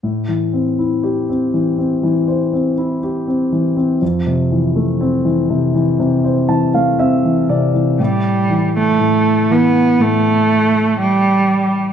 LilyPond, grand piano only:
<<
  \new Staff \with { instrumentName = "Grand piano" } { \time 4/4 \key a \minor \tempo 4 = 60 r1 | r2 r8 a''16 f''16 e''8 d''8 | r1 | }
  \new Staff \with { instrumentName = "Grand piano" } { \clef bass \time 4/4 \key a \minor a,16 e16 c'16 e'16 g'16 c'16 e16 c'16 e16 c''16 c'16 e'16 g'16 c'16 e16 c'16 | f,16 c16 e16 a16 c'16 e16 c16 e16 c16 c''16 e16 a16 c'16 e16 c16 e16 | a,8 e8 a,8 e8 a,2 | }
>>